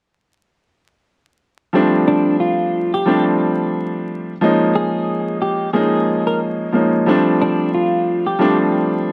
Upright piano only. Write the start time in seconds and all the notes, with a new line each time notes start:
1.73 F3 G3 A3 C4 D4
3.06 F3 G3 A3 C4 D4
4.41 F3 G#3 A#3 C#4 D#4
5.73 F3 G#3 A#3 C#4 D#4
6.72 F3 G#3 A#3 C#4 D#4
7.06 F3 G3 A3 C4 D4
8.39 F3 G3 A3 C4 D4